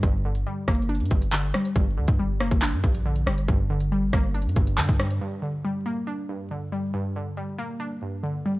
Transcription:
Already playing: A#2 D3 G3 D4
0.03 G1 G2, kick, closed hi-hat
0.25 D3
0.35 closed hi-hat
0.47 G3
0.68 G1 A#3, kick, cross-stick, closed hi-hat
0.75 closed hi-hat
0.82 closed hi-hat
0.89 D4, closed hi-hat
0.95 closed hi-hat
1.00 G2, closed hi-hat
1.06 closed hi-hat
1.11 G1 G2, kick, closed hi-hat
1.22 closed hi-hat
1.32 D3, clap
1.54 G3, cross-stick, closed hi-hat
1.65 closed hi-hat
1.76 G1 G2, kick, closed hi-hat
1.97 D2 D3
2.08 G2, kick, closed hi-hat
2.19 G1 G3
2.40 F#1 A#3, cross-stick, closed hi-hat
2.51 G1, kick
2.62 D4, clap, closed hi-hat
2.73 G2
2.84 A#1 G2, kick
2.95 closed hi-hat
3.06 D3
3.16 closed hi-hat
3.26 G1 G3, cross-stick
3.38 closed hi-hat
3.48 G1 G2, kick, closed hi-hat
3.70 D3
3.80 closed hi-hat
3.92 G3
4.13 G1 A#3, kick, cross-stick, closed hi-hat
4.34 D4, closed hi-hat
4.42 G2, closed hi-hat
4.49 closed hi-hat
4.56 G1 G2, kick, closed hi-hat
4.67 closed hi-hat
4.78 G2 D3, clap
4.89 G2, kick
5.00 G3, cross-stick, closed hi-hat
5.11 closed hi-hat
5.21 G2
5.42 D3
5.65 G3
5.86 A#3
6.07 D4
6.29 G2
6.51 D3
6.72 G3
6.94 G2
7.16 D3
7.37 G3
7.59 A#3
7.80 D4
8.02 G2
8.23 D3
8.46 G3

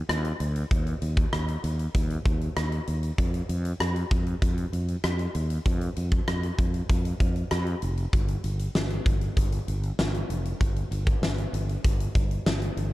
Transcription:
0.09 D#2, cross-stick, closed hi-hat
0.24 closed hi-hat
0.40 D2, closed hi-hat
0.56 closed hi-hat
0.71 D#2, kick, closed hi-hat
0.87 closed hi-hat
1.02 D#2, closed hi-hat
1.17 kick, closed hi-hat
1.33 D#2, cross-stick, closed hi-hat
1.48 closed hi-hat
1.64 D#2, closed hi-hat
1.79 closed hi-hat
1.94 D#2, kick, closed hi-hat
2.10 closed hi-hat
2.25 D#2, kick, closed hi-hat
2.41 closed hi-hat
2.56 D#2, cross-stick, closed hi-hat
2.72 closed hi-hat
2.87 D#2, closed hi-hat
3.03 closed hi-hat
3.18 F2, kick, closed hi-hat
3.34 closed hi-hat
3.49 F2, closed hi-hat
3.65 closed hi-hat
3.80 F2, cross-stick, closed hi-hat
3.96 closed hi-hat
4.11 F2, kick, closed hi-hat
4.26 closed hi-hat
4.42 F2, kick, closed hi-hat
4.58 closed hi-hat
4.73 F2, closed hi-hat
4.88 closed hi-hat
5.04 F2, cross-stick, closed hi-hat
5.19 closed hi-hat
5.35 D#2, closed hi-hat
5.50 closed hi-hat
5.66 F2, kick, closed hi-hat
5.81 closed hi-hat
5.96 F2, closed hi-hat
6.12 kick, closed hi-hat
6.28 F2, cross-stick, closed hi-hat
6.43 closed hi-hat
6.59 F2, kick, closed hi-hat
6.74 closed hi-hat
6.89 F2, kick, closed hi-hat
7.05 closed hi-hat
7.20 F2, kick, closed hi-hat
7.36 closed hi-hat
7.51 F2, cross-stick, closed hi-hat
7.66 closed hi-hat
7.82 F1, closed hi-hat
7.97 closed hi-hat
8.13 G1, kick, closed hi-hat
8.28 closed hi-hat
8.44 G1, closed hi-hat
8.59 closed hi-hat
8.75 G1, snare
8.90 closed hi-hat
9.06 G1, kick, closed hi-hat
9.21 closed hi-hat
9.37 G1, kick, closed hi-hat
9.52 closed hi-hat
9.68 G1, closed hi-hat
9.83 closed hi-hat
9.99 G1, snare
10.14 closed hi-hat
10.29 F1, closed hi-hat
10.45 closed hi-hat
10.61 G1, kick, closed hi-hat
10.76 closed hi-hat
10.91 G1, closed hi-hat
11.07 kick, closed hi-hat
11.22 G1, snare
11.38 closed hi-hat
11.53 G1, closed hi-hat
11.69 closed hi-hat
11.84 G1, kick, closed hi-hat
12.00 closed hi-hat
12.15 G1, kick, closed hi-hat
12.31 closed hi-hat
12.46 G1, snare
12.62 closed hi-hat
12.77 G1, closed hi-hat

